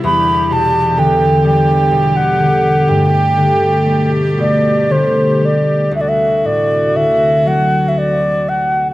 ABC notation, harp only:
X:1
M:6/8
L:1/8
Q:3/8=40
K:Dmix
V:1 name="Harp" clef=bass
E,, B,, D, G, B,, D, | G,, D, G, B,, D, G, | D,, A,, D, F,3 |]